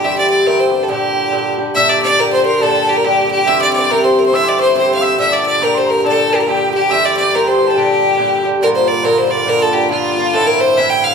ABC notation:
X:1
M:2/4
L:1/16
Q:"Swing" 1/4=140
K:Gdor
V:1 name="Tin whistle"
z8 | z8 | e' d' d'2 b c'3 | a2 g b g2 g2 |
e' d' d'2 b c'2 c' | e' d' c'2 c'2 e'2 | e' d'3 b c' b2 | a3 b g2 g2 |
e' d' d'2 b c'2 a | g6 z2 | z8 | z8 |
z8 |]
V:2 name="Fiddle"
e d d2 B c2 A | G6 z2 | e d d2 B c B2 | A2 G B G2 G2 |
e d d2 B c B c | e d c2 c3/2 f/2 e2 | e d d2 B c B2 | A2 G B G2 G2 |
e d d2 B c2 A | G6 z2 | B c d2 B c d2 | B A G2 F4 |
A B c2 e g f2 |]
V:3 name="Bouzouki"
[G,,E,CG]4 [G,,E,CG]2 [E,CG]2 | [B,,D,DG]4 [B,,D,DG]2 [D,DG]2 | [B,,D,DG]4 [B,,D,DG]2 [D,DG]2 | [B,,D,DG]4 [B,,D,DG]4 |
[C,E,CG]4 [C,E,CG]4 | [C,E,CG]4 [C,E,CG]4 | [B,,D,DG]4 [B,,D,DG]4 | [B,,D,DG]4 [B,,D,DG]2 [D,DG]2 |
[G,,E,CG]4 [G,,E,CG]2 [E,CG]2 | [B,,D,DG]4 [B,,D,DG]2 [D,DG]2 | [B,,D,B,F]4 [B,,D,B,F]2 [D,B,F]2 | [B,,D,B,F]4 [B,,D,B,F]2 [D,B,F]2 |
[A,,E,CE]4 [A,,E,CE]4 |]
V:4 name="Accordion" clef=bass
[G,,D,]8- | [G,,D,]8 | [G,,D,]8- | [G,,D,]8- |
[G,,D,]8- | [G,,D,]8 | [G,,D,]8- | [G,,D,]8- |
[G,,D,]8- | [G,,D,]8 | [G,,D,]8- | [G,,D,]8- |
[G,,D,]8 |]